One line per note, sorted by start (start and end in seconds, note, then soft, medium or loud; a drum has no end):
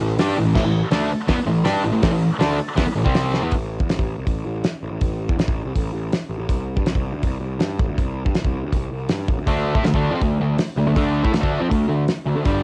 0.00 0.17 A1 medium
0.00 0.15 A2 medium
0.00 0.15 E3 medium
0.18 0.35 G2 loud
0.18 0.37 G3 medium
0.18 0.37 D4 loud
0.18 0.37 G4 loud
0.18 snare loud
0.18 open hi-hat medium
0.37 0.45 A1 medium
0.37 0.46 A2 medium
0.37 0.46 E3 medium
0.45 0.54 A1 medium
0.45 0.54 A2 medium
0.45 0.55 E3 medium
0.55 0.63 A1 loud
0.55 0.63 A2 medium
0.55 0.64 E3 loud
0.55 kick loud
0.55 snare loud
0.55 crash loud
0.64 0.81 A1 medium
0.64 0.79 A2 medium
0.64 0.79 E3 medium
0.91 1.09 D2 loud
0.91 1.09 D3 loud
0.91 1.10 A3 loud
0.91 1.10 D4 loud
0.91 snare loud
0.91 open hi-hat medium
1.27 1.38 E2 loud
1.27 1.37 E3 loud
1.27 1.38 B3 loud
1.27 kick loud
1.27 snare loud
1.27 open hi-hat medium
1.38 muted distorted electric guitar stroke medium
1.38 muted picked electric bass stroke soft
1.46 1.65 A1 medium
1.46 1.61 A2 medium
1.46 1.62 E3 medium
1.64 1.83 G2 loud
1.64 1.83 G3 medium
1.64 1.83 D4 loud
1.64 1.84 G4 loud
1.64 snare loud
1.64 open hi-hat medium
1.84 1.93 A1 medium
1.84 1.91 A2 medium
1.84 1.91 E3 medium
1.92 2.02 A1 medium
1.92 2.01 A2 medium
1.92 2.02 E3 medium
2.03 2.12 A1 medium
2.03 2.11 A2 medium
2.03 2.11 E3 loud
2.03 kick loud
2.03 snare loud
2.03 open hi-hat medium
2.12 2.30 A1 medium
2.12 2.27 A2 medium
2.12 2.27 E3 medium
2.39 2.58 D2 loud
2.39 2.58 D3 loud
2.39 2.58 A3 loud
2.39 2.58 D4 loud
2.39 snare loud
2.39 open hi-hat medium
2.76 2.86 E2 medium
2.76 2.86 E3 medium
2.76 2.86 B3 loud
2.76 kick loud
2.76 snare loud
2.76 open hi-hat medium
2.87 muted distorted electric guitar stroke medium
2.87 muted picked electric bass stroke soft
2.96 3.04 A1 medium
2.96 3.04 A2 medium
2.96 3.04 E3 medium
3.04 3.40 C2 loud
3.04 3.41 C3 loud
3.04 3.42 G3 loud
3.04 3.42 C4 loud
3.04 kick loud
3.15 snare loud
3.15 open hi-hat medium
3.34 snare medium
3.42 3.51 E2 loud
3.42 3.51 E3 medium
3.42 3.52 B3 medium
3.51 3.78 A1 medium
3.51 kick loud
3.51 open hi-hat medium
3.80 3.88 E2 medium
3.80 kick loud
3.89 3.98 A1 medium
3.89 snare loud
3.89 open hi-hat medium
3.99 4.16 A1 medium
3.99 kick medium
4.18 4.26 C2 medium
4.27 4.44 A1 medium
4.27 kick medium
4.27 open hi-hat medium
4.46 4.63 A1 medium
4.64 snare loud
4.64 open hi-hat soft
4.83 4.91 A1 medium
4.91 5.00 A1 medium
5.01 5.27 A1 medium
5.01 kick medium
5.01 open hi-hat soft
5.29 5.37 E2 medium
5.29 kick loud
5.37 5.46 A1 medium
5.37 snare loud
5.37 open hi-hat soft
5.48 5.65 A1 medium
5.48 kick loud
5.65 5.74 C2 medium
5.76 5.93 A1 medium
5.76 kick medium
5.76 open hi-hat medium
5.93 6.11 A1 medium
6.13 snare loud
6.13 open hi-hat soft
6.29 6.38 A1 medium
6.39 6.48 A1 medium
6.49 6.75 C2 medium
6.49 kick medium
6.49 open hi-hat medium
6.76 6.85 G2 medium
6.76 kick loud
6.86 6.94 C2 medium
6.86 snare loud
6.86 open hi-hat medium
6.95 7.12 C2 medium
6.95 kick medium
7.13 7.22 D2 medium
7.23 7.40 C2 medium
7.23 kick medium
7.23 open hi-hat soft
7.40 7.59 C2 medium
7.59 7.78 G2 medium
7.59 snare loud
7.59 open hi-hat soft
7.79 7.87 A1 medium
7.79 kick loud
7.88 7.97 D2 medium
7.98 8.24 C2 medium
7.98 kick loud
7.98 open hi-hat soft
8.25 8.34 G2 medium
8.25 kick loud
8.35 8.44 C2 medium
8.35 snare loud
8.35 open hi-hat soft
8.44 8.62 C2 loud
8.44 kick medium
8.63 8.72 D2 medium
8.72 8.90 C2 medium
8.72 kick medium
8.72 open hi-hat soft
8.92 9.09 C2 medium
9.09 9.27 G2 loud
9.09 snare loud
9.09 open hi-hat medium
9.28 9.37 A1 medium
9.28 kick loud
9.38 9.46 D2 medium
9.47 9.73 D2 medium
9.47 9.74 D3 medium
9.47 9.74 A3 loud
9.47 9.75 D4 loud
9.47 kick loud
9.47 open hi-hat medium
9.75 9.82 A2 medium
9.75 9.83 A3 medium
9.75 9.84 E4 medium
9.75 kick loud
9.83 9.92 D2 medium
9.83 9.93 D3 medium
9.83 9.93 A3 medium
9.83 snare loud
9.83 open hi-hat medium
9.94 10.10 D2 medium
9.94 10.11 D3 medium
9.94 10.12 A3 medium
9.94 10.13 D4 loud
9.94 kick loud
10.11 10.20 F2 medium
10.11 10.21 F3 medium
10.11 10.21 C4 loud
10.22 10.39 D2 medium
10.22 10.37 D3 medium
10.22 10.37 A3 medium
10.22 kick medium
10.22 open hi-hat soft
10.39 10.57 D2 medium
10.39 10.56 D3 medium
10.39 10.56 A3 medium
10.59 snare loud
10.59 open hi-hat medium
10.76 10.86 D2 medium
10.76 10.86 D3 medium
10.76 10.86 A3 medium
10.86 10.95 D2 medium
10.86 10.95 D3 medium
10.86 10.95 A3 medium
10.96 11.23 D2 medium
10.96 11.23 D3 loud
10.96 11.22 A3 medium
10.96 11.24 D4 loud
10.96 kick loud
10.96 open hi-hat medium
11.23 11.31 A2 medium
11.23 11.32 A3 medium
11.23 11.33 E4 medium
11.23 kick loud
11.32 11.41 D2 medium
11.32 11.40 D3 medium
11.32 11.40 A3 medium
11.32 snare loud
11.32 open hi-hat medium
11.41 11.60 D2 medium
11.41 11.59 D3 loud
11.41 11.60 A3 medium
11.41 11.61 D4 loud
11.41 kick loud
11.60 11.70 F2 medium
11.60 11.69 F3 medium
11.60 11.70 C4 medium
11.70 11.88 D2 medium
11.70 11.85 D3 medium
11.70 11.85 A3 medium
11.70 kick medium
11.70 open hi-hat soft
11.88 12.06 D2 medium
11.88 12.04 D3 medium
11.88 12.04 A3 medium
12.08 snare loud
12.08 open hi-hat medium
12.26 12.35 D2 medium
12.26 12.35 D3 medium
12.26 12.35 A3 medium
12.36 12.45 D2 medium
12.36 12.45 D3 medium
12.36 12.46 A3 medium
12.45 12.63 G1 medium
12.45 12.63 G2 loud
12.45 12.63 D3 medium
12.45 12.63 G3 loud
12.45 kick loud
12.45 open hi-hat medium